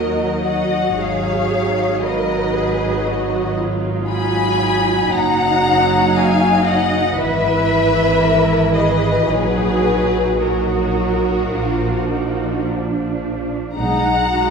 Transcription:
Already playing: D#2 F#3 D#4 F#4 A#4 D#5
0.44 F#4 D#5 F#5
0.98 G#1 F#3 D#4 G#4 C#5 F5
2.04 F#3 D#4 A#4 B4 D#5
2.57 G#4
3.08 F#4
3.59 F4
4.09 F#3 D#4 G#5 B5
5.11 F#1 F#3 D#4 F#5 A#5
6.16 F5 G#5
6.67 D#5 F#5
7.17 G#1 E3 E4 B4 E5
8.20 A#4
8.74 G#4 B4 D#5
9.29 A#1 F#3 D#4 F#4 G#4 B4
10.41 F#3 D#4 F#4 A#4
11.52 A#1 F3 D4 F4
12.09 D#4
12.65 D4
13.75 B1 G#3 D#4 F#5 A#5
14.31 G#3 D#4 F#4

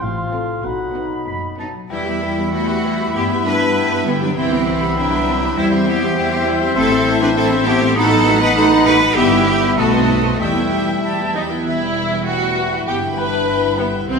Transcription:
Already playing: C4 C5 C6
0.01 A1 A2 F3 F4 F5
0.32 C4 F4 A4 F5
0.63 B1 B2 F#3 D#4 F#4 F#5 B5
0.95 B3 D#4 F#5
1.27 F#1 F#2 D#4 B5
1.59 F#3 B3 D#4 F#4 F#5 A5
1.90 E2 G3 E4 B4 E5 G5 B5
2.06 G3 B3 G4 E5 B5
2.22 G3 E4 B4 G5
2.37 B3 G4 B4 E5 B5
2.53 G3 A3 E4 F#4 B4 E5 F#5 G5
2.69 B3 G4 B4 E5 B5
2.85 G3 E4 G4 B4 G5
3.00 B3 E4 G4 E5 B5
3.14 G2 G3 B3 E4 G4 B4 E5 G5
3.30 G3 B3 G4 E5 B5
3.45 G3 D4 E4 B4 G5
3.61 B3 G4 B4 E5 B5
3.76 G3 E4 B4 E5 G5
3.91 B3 G4 B4 E5 B5
4.06 D3 G3 B3 E4 G4 B4 G5
4.20 F#3 B3 D4 E4 G4 E5 B5
4.36 C2 C3 E3 C4 E4 C5 E5 G5 B5
4.51 B3 G4 E5 B5
4.66 C4 E4 G4 C5 F#5 G5
4.81 B3 G4 E5 B5
4.96 F#3 C4 D4 E4 C5 E5 G5
5.12 B3 G4 E5 B5
5.27 C4 E4 B4 C5 G5
5.42 B3 G4 E5 B5
5.57 E2 E3 G3 C4 E4 C5 E5 G5
5.72 C4 G4 E5 C6
5.87 G3 B3 E4 G4 C5 G5
6.02 C4 G4 E5 C6
6.17 G3 E4 C5 G5
6.32 C4 G4 E5 C6
6.47 G3 E4 C5 D5 G5
6.62 C4 G4 E5 C6
6.76 A1 A2 A3 C4 E4 A4 C5 E5 A5
6.92 A3 C4 A4 E5 C6
7.07 A3 E4 C5 A5
7.21 C4 D4 A4 B4 C5 E5 C6
7.36 A3 C4 E4 A4 C5 E5 A5
7.51 C4 A4 C5 E5 C6
7.66 A3 B3 E4 G4 A4 C5 A5
7.82 C4 E4 A4 E5 C6
7.96 A2 A3 B3 D#4 F#4 A4 D#5 F#5 B5
8.12 F#3 B3 D#4 D#5 A5
8.26 A3 D#4 F#4 F#5 B5
8.41 B3 D#4 B4 D#5 A5
8.56 A3 D#4 F#4 A4 D#5 F#5 B5
8.72 B3 D#4 B4 D#5 A5
8.86 A3 D#4 F#4 B4 F#5 B5
9.02 B3 D#4 D#5 A5
9.16 G1 G2 G3 B3 E4 G4 E5 G5 B5
9.32 G3 B3 E4 E5 G5
9.47 G3 E4 G4 G5 B5
9.63 B3 E4 B4 E5 G5
9.77 B1 B2 A3 B3 D#4 F#4 A4 C5 D#5 A5 B5
9.93 A3 C4 B4 D#5 C6
10.09 B3 D#4 A4 C5 B5
10.24 C4 B4 C5 D#5 C6
10.34 F#4
10.40 E2 E3 G3 E4 G4 E5 G5 B5
10.56 B3 E4 E5 G5
10.72 G3 G4 G5 B5
10.87 B3 E4 E5 G5
11.03 G3 G4 G5 A5 B5
11.19 B3 E4 E5 G5
11.35 F#3 G3 D#4 G4 B4 D#5 G5 B5
11.51 B3 E4 G4 E5 G5
11.65 E1 E2 E3 G3 E4 B4 E5 B5
11.81 B3 B4 E5 G5
11.96 G4 B4 E5 B5
12.12 B4 E5 G5
12.26 A3 F#4 B4 E5 F#5 G5 B5
12.42 B4 E5 G5
12.57 B4 E5 B5
12.72 G4 B4 E5 G5
12.87 G1 G2 B3 G4 E5 G5
13.03 G3 E5 G5 B5
13.18 D4 E4 B4 E5 G5 B5
13.33 B4 E5 G5 B5
13.49 E5 G5
13.63 B4 E5 G5 B5
13.78 D3 B3 G4 B4 E5 G5
13.94 E4 E5 G5 B5
14.09 C2 C3 E3 C4 E4 C5 G5 C6

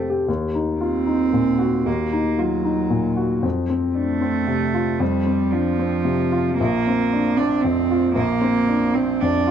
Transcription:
Already playing: F2 C3 C4 G4 A4 C5 G5
0.10 G4
0.28 D#2
0.55 D#4
0.80 C4 F4
1.06 D#4
1.33 A#2
1.59 F#4
1.86 D#2 A#3
2.13 D#4
2.38 F#3 F4
2.64 D#4
2.90 A#2
3.16 F#4
3.43 F2
3.70 C4
3.95 A3 D4
4.21 C4
4.47 C3
4.74 F4
5.00 F2 G3
5.26 C4
5.52 F3 D4
5.79 C4
6.05 C3
6.32 F4
6.58 A#1 A#3
6.87 C4
7.13 D4
7.37 C4 D4
7.61 F2 C4
7.91 F4
8.15 A#1 A#3
8.41 C4
8.68 D4
8.93 C4
9.20 F2 D4
9.47 F4

